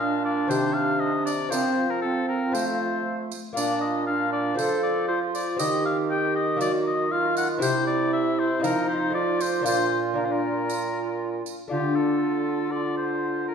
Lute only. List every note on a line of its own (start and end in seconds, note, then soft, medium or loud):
0.00 0.47 A#2 medium
0.00 0.46 D4 medium
0.00 0.47 A#4 soft
0.48 1.48 C3 medium
0.48 1.48 D#3 medium
0.48 1.47 C4 medium
0.48 1.49 G4 medium
1.49 3.28 F3 medium
1.49 2.50 C4 soft
1.49 2.50 F4 soft
1.49 2.51 A#4 soft
2.52 3.52 C4 soft
2.52 3.53 F4 medium
2.52 3.54 A4 soft
3.53 4.55 A#2 soft
3.53 4.54 A#3 soft
3.53 4.54 F4 medium
3.53 4.55 A#4 soft
4.54 5.55 C4 medium
4.54 5.55 F4 medium
4.54 5.56 A4 soft
4.59 5.56 F3 medium
5.56 7.58 D#3 medium
5.56 6.56 C4 soft
5.56 6.57 G4 medium
6.56 7.58 F#3 medium
6.56 7.57 A#3 medium
6.56 7.57 D#4 medium
7.58 8.60 C3 medium
7.58 8.58 C4 medium
7.58 8.59 E4 soft
7.58 8.60 G4 medium
8.60 9.10 C4 medium
8.60 9.10 D#4 medium
8.60 9.12 F4 medium
8.64 9.62 F3 medium
9.10 9.61 A3 soft
9.10 9.62 D#4 soft
9.10 9.63 F4 soft
9.61 11.41 A#2 soft
9.61 10.13 A#3 soft
9.61 10.14 D4 soft
9.61 10.15 F4 soft
10.14 11.66 A#3 soft
10.14 11.66 D4 soft
10.14 11.67 F4 soft
11.68 13.55 D3 soft
11.68 13.55 A3 soft
11.68 13.55 D4 soft
11.68 13.55 F4 soft